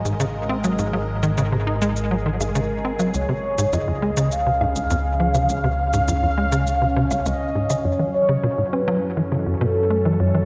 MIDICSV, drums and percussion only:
0, 0, Header, 1, 2, 480
1, 0, Start_track
1, 0, Tempo, 588235
1, 642, Time_signature, 4, 2, 24, 8
1, 8528, End_track
2, 0, Start_track
2, 0, Title_t, "Drums"
2, 44, Note_on_c, 9, 82, 57
2, 125, Note_off_c, 9, 82, 0
2, 164, Note_on_c, 9, 82, 50
2, 245, Note_off_c, 9, 82, 0
2, 403, Note_on_c, 9, 77, 61
2, 485, Note_off_c, 9, 77, 0
2, 522, Note_on_c, 9, 77, 49
2, 522, Note_on_c, 9, 82, 60
2, 603, Note_off_c, 9, 77, 0
2, 603, Note_off_c, 9, 82, 0
2, 642, Note_on_c, 9, 82, 46
2, 724, Note_off_c, 9, 82, 0
2, 762, Note_on_c, 9, 77, 45
2, 844, Note_off_c, 9, 77, 0
2, 1003, Note_on_c, 9, 82, 56
2, 1085, Note_off_c, 9, 82, 0
2, 1123, Note_on_c, 9, 82, 47
2, 1204, Note_off_c, 9, 82, 0
2, 1483, Note_on_c, 9, 82, 59
2, 1565, Note_off_c, 9, 82, 0
2, 1602, Note_on_c, 9, 82, 46
2, 1684, Note_off_c, 9, 82, 0
2, 1964, Note_on_c, 9, 77, 67
2, 1964, Note_on_c, 9, 82, 57
2, 2045, Note_off_c, 9, 77, 0
2, 2045, Note_off_c, 9, 82, 0
2, 2083, Note_on_c, 9, 82, 46
2, 2164, Note_off_c, 9, 82, 0
2, 2443, Note_on_c, 9, 77, 49
2, 2443, Note_on_c, 9, 82, 57
2, 2524, Note_off_c, 9, 77, 0
2, 2524, Note_off_c, 9, 82, 0
2, 2563, Note_on_c, 9, 82, 47
2, 2644, Note_off_c, 9, 82, 0
2, 2924, Note_on_c, 9, 82, 57
2, 3005, Note_off_c, 9, 82, 0
2, 3042, Note_on_c, 9, 82, 47
2, 3123, Note_off_c, 9, 82, 0
2, 3402, Note_on_c, 9, 82, 57
2, 3484, Note_off_c, 9, 82, 0
2, 3523, Note_on_c, 9, 82, 46
2, 3604, Note_off_c, 9, 82, 0
2, 3762, Note_on_c, 9, 77, 71
2, 3844, Note_off_c, 9, 77, 0
2, 3882, Note_on_c, 9, 82, 57
2, 3964, Note_off_c, 9, 82, 0
2, 4002, Note_on_c, 9, 82, 47
2, 4084, Note_off_c, 9, 82, 0
2, 4241, Note_on_c, 9, 77, 61
2, 4323, Note_off_c, 9, 77, 0
2, 4361, Note_on_c, 9, 77, 52
2, 4361, Note_on_c, 9, 82, 58
2, 4443, Note_off_c, 9, 77, 0
2, 4443, Note_off_c, 9, 82, 0
2, 4482, Note_on_c, 9, 82, 47
2, 4564, Note_off_c, 9, 82, 0
2, 4602, Note_on_c, 9, 77, 49
2, 4684, Note_off_c, 9, 77, 0
2, 4841, Note_on_c, 9, 82, 58
2, 4923, Note_off_c, 9, 82, 0
2, 4962, Note_on_c, 9, 82, 48
2, 5043, Note_off_c, 9, 82, 0
2, 5322, Note_on_c, 9, 82, 58
2, 5403, Note_off_c, 9, 82, 0
2, 5442, Note_on_c, 9, 82, 47
2, 5523, Note_off_c, 9, 82, 0
2, 5801, Note_on_c, 9, 77, 71
2, 5801, Note_on_c, 9, 82, 57
2, 5882, Note_off_c, 9, 77, 0
2, 5882, Note_off_c, 9, 82, 0
2, 5922, Note_on_c, 9, 82, 49
2, 6003, Note_off_c, 9, 82, 0
2, 6282, Note_on_c, 9, 77, 54
2, 6282, Note_on_c, 9, 82, 58
2, 6363, Note_off_c, 9, 77, 0
2, 6363, Note_off_c, 9, 82, 0
2, 8528, End_track
0, 0, End_of_file